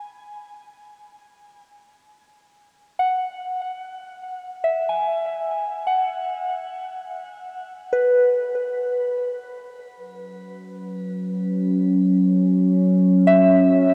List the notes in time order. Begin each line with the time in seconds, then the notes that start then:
Already playing: G#5
2.99 F#5
4.64 E5
4.89 G#5
5.87 F#5
7.93 B4
9.97 F#3 C#4
13.27 E5